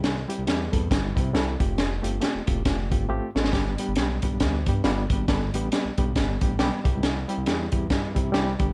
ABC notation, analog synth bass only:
X:1
M:4/4
L:1/16
Q:"Swing" 1/4=137
K:C
V:1 name="Analog synth bass" clef=bass
C,,2 z C,, E,,2 E,,2 G,,,2 C,2 C,,2 F,,,2 | F,,,2 G,,,2 z E,,, E,,,2 F,,,2 G,,,2 A,,, z A,,, _A,,, | G,,,2 z G,,, B,,,2 B,,,2 D,,2 G,,2 G,,,2 _A,,,2 | G,,,2 A,,,2 z B,,, B,,,2 G,,,2 A,,,2 B,,, z C,, _D,, |
C,,2 z C,, E,,2 E,,2 G,,2 C,2 C,,2 G,,,2 |]